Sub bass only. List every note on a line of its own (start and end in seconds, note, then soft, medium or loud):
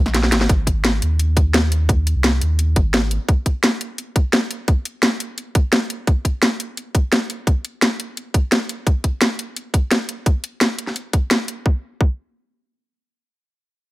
0.00 0.14 A#1 medium
0.15 0.34 A#1 medium
0.32 0.48 G#1 loud
0.49 1.00 G#1 loud
1.02 2.14 D#2 medium
2.16 2.40 C2 medium
2.42 2.75 D#2 medium
2.76 3.18 G#1 medium